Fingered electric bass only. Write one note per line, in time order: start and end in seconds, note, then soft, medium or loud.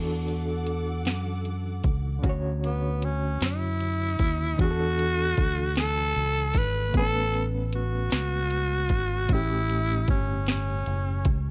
0.00 1.06 E2 loud
1.06 1.80 F#2 medium
1.85 2.20 C#2 medium
2.24 3.37 D2 loud
3.42 4.16 F#2 medium
4.20 4.55 D#2 medium
4.59 5.34 E2 loud
5.38 6.12 D2 medium
6.16 6.51 C#2 loud
6.55 6.90 G#1 loud
6.94 8.08 A1 loud
8.13 8.87 C#2 loud
8.90 9.25 G#1 medium
9.30 10.04 A1 loud
10.09 10.83 G1 medium
10.87 11.22 F#1 loud
11.26 11.51 C#2 loud